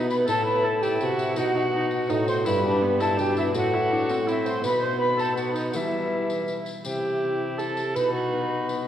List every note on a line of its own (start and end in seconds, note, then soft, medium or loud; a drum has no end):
0.00 0.27 B2 medium
0.00 0.30 B2 medium
0.00 0.28 B3 medium
0.00 0.30 B3 medium
0.00 0.28 D#4 medium
0.00 0.29 F#4 medium
0.10 0.28 B4 medium
0.10 0.16 B5 loud
0.10 tambourine medium
0.24 0.99 A2 medium
0.24 1.38 A2 medium
0.24 1.36 C4 medium
0.24 1.37 E4 medium
0.24 tambourine medium
0.28 1.38 E4 medium
0.28 0.45 A4 loud
0.28 0.44 A5 loud
0.45 0.65 B4 loud
0.45 0.65 B5 loud
0.63 0.81 A4 loud
0.63 0.84 A5 loud
0.81 1.00 G4 medium
0.81 1.01 G5 loud
0.81 tambourine medium
1.00 1.39 C3 medium
1.00 1.37 F#4 medium
1.00 1.06 G5 loud
1.00 tambourine medium
1.05 1.37 F#5 loud
1.19 tambourine medium
1.34 2.12 B2 medium
1.34 2.48 B2 medium
1.34 2.42 B3 medium
1.34 2.47 D#4 medium
1.34 1.54 D#4 medium
1.34 2.47 F#4 medium
1.34 2.11 F#4 loud
1.34 tambourine medium
1.39 2.11 F#5 loud
1.55 1.62 D#4 medium
1.73 2.09 D#4 medium
1.91 tambourine medium
2.09 2.47 A2 medium
2.09 2.46 A2 medium
2.09 2.27 D#4 medium
2.09 2.47 F#4 medium
2.09 2.27 D#5 loud
2.09 tambourine medium
2.27 2.35 C5 medium
2.27 2.48 C6 loud
2.27 tambourine medium
2.43 3.57 G2 medium
2.43 3.21 G2 medium
2.43 3.55 B3 medium
2.43 3.56 D4 medium
2.43 2.64 E4 medium
2.43 3.56 G4 medium
2.43 3.02 B4 medium
2.43 2.77 B5 loud
2.43 tambourine medium
2.65 2.84 D4 medium
2.82 3.02 B3 medium
3.00 3.19 E4 medium
3.00 3.18 A4 medium
3.00 3.19 A5 loud
3.00 tambourine medium
3.17 3.54 B2 medium
3.17 3.57 B2 medium
3.17 3.54 D4 medium
3.17 3.39 G4 medium
3.17 3.37 G5 loud
3.17 tambourine medium
3.37 3.55 E4 medium
3.37 3.45 E5 loud
3.37 tambourine soft
3.52 4.62 A2 medium
3.52 4.66 A2 medium
3.52 4.65 A3 medium
3.52 4.65 C4 medium
3.52 4.65 E4 medium
3.52 3.75 F#4 medium
3.52 4.29 F#4 loud
3.52 tambourine medium
3.58 4.28 F#5 loud
3.73 3.93 E4 medium
3.92 4.12 D4 medium
4.09 4.27 C4 medium
4.09 tambourine medium
4.27 4.63 C4 medium
4.27 4.47 E4 medium
4.27 4.47 E5 loud
4.27 tambourine medium
4.46 4.64 C5 medium
4.46 4.65 C6 loud
4.46 tambourine medium
4.61 5.76 B2 medium
4.61 5.77 B2 medium
4.61 5.71 B3 medium
4.61 5.34 B3 medium
4.61 5.75 D#4 medium
4.61 4.82 B4 loud
4.61 tambourine medium
4.65 4.85 B5 loud
4.82 5.00 C5 medium
4.82 4.99 C6 loud
5.00 5.18 B4 medium
5.00 5.21 B5 loud
5.19 5.36 A4 medium
5.19 5.36 A5 loud
5.19 tambourine medium
5.36 5.76 B3 medium
5.36 5.54 F#4 medium
5.36 5.54 F#5 loud
5.36 tambourine medium
5.54 5.76 D#4 medium
5.54 5.72 D#5 medium
5.54 tambourine medium
5.72 6.87 E3 medium
5.72 6.67 E3 medium
5.72 6.67 G3 medium
5.72 6.86 B3 soft
5.72 7.21 E4 soft
5.72 6.67 E4 medium
5.72 6.64 E5 medium
5.72 5.77 F#5 medium
5.72 tambourine medium
6.30 tambourine medium
6.48 tambourine soft
6.66 tambourine soft
6.84 7.97 C3 soft
6.84 7.91 C3 medium
6.84 7.98 E4 medium
6.84 7.60 G4 medium
6.84 7.54 G5 medium
6.84 tambourine medium
7.22 7.59 C4 soft
7.22 7.59 E4 soft
7.57 7.98 C4 soft
7.57 7.98 E4 soft
7.57 7.96 A4 medium
7.57 7.94 A5 medium
7.57 tambourine medium
7.77 tambourine soft
7.94 8.88 B2 medium
7.94 8.88 D#4 medium
7.94 8.13 B4 medium
7.94 8.88 B5 medium
7.94 tambourine medium
8.14 8.85 F#4 medium
8.32 8.67 B3 soft
8.32 8.68 D#4 soft
8.32 8.68 F#4 medium
8.69 8.88 B3 soft
8.69 8.88 D#4 soft
8.69 8.88 F#4 medium
8.69 tambourine soft